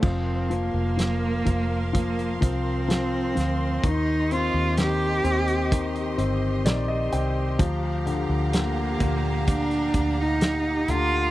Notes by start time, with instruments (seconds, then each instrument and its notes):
0.02 fingered electric bass F1, grand piano F3, cello C4, string section A#4 F5 C6, kick, crash
0.50 grand piano F3, cello A#3, closed hi-hat
0.74 fingered electric bass F1
0.97 grand piano F3, snare, closed hi-hat
1.45 fingered electric bass F1, grand piano F3, kick, closed hi-hat
1.93 grand piano F3, cello A#3, kick, closed hi-hat
2.19 closed hi-hat
2.41 fingered electric bass C2, grand piano F3, cello C4, kick, closed hi-hat
2.88 grand piano F3, snare, closed hi-hat
3.35 fingered electric bass D2, grand piano F3, snare, closed hi-hat
3.83 fingered electric bass D#2, grand piano D#3, cello D#4, string section G4 D#5, kick, closed hi-hat
4.31 grand piano C4, cello F4, closed hi-hat
4.54 fingered electric bass D#2
4.77 grand piano D#3, cello G4, snare, closed hi-hat
5.24 fingered electric bass D#2, grand piano C4, closed hi-hat
5.47 closed hi-hat
5.71 grand piano D#3, kick, closed hi-hat
5.95 closed hi-hat
6.18 fingered electric bass G1, grand piano C4, closed hi-hat
6.65 fingered electric bass A#1, grand piano D#3 D5, snare, closed hi-hat
6.88 grand piano D#5
7.12 fingered electric bass C2, grand piano C4 G5, closed hi-hat
7.59 fingered electric bass D2, grand piano F3, string section F5 A#5, kick, closed hi-hat
8.06 grand piano D3, closed hi-hat
8.30 fingered electric bass D2
8.53 grand piano D3, cello A#3, snare, closed hi-hat
9.00 fingered electric bass D2, grand piano A#2, kick, closed hi-hat
9.47 cello D4, kick, closed hi-hat
9.71 closed hi-hat
9.94 fingered electric bass D2, kick, closed hi-hat
10.21 cello D#4
10.41 snare, closed hi-hat
10.88 fingered electric bass D2, grand piano D3, cello F4, closed hi-hat